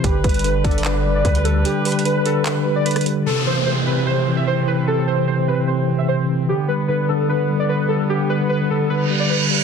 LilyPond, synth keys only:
\new Staff \with { instrumentName = "Synth keys" } { \time 4/4 \key a \minor \tempo 4 = 149 g'8 b'8 b'8 a'8 b'8. d''16 b'8 a'8 | g'8 b'8 b'8 a'8 b'8. d''16 b'8 r8 | a'8 c''8 c''8 b'8 c''8. e''16 c''8 b'8 | a'8 c''8 c''8 b'8 c''8. e''16 c''8 r8 |
g'8 b'8 b'8 a'8 b'8. d''16 b'8 a'8 | g'8 b'8 b'8 a'8 b'8. d''16 b'8 r8 | }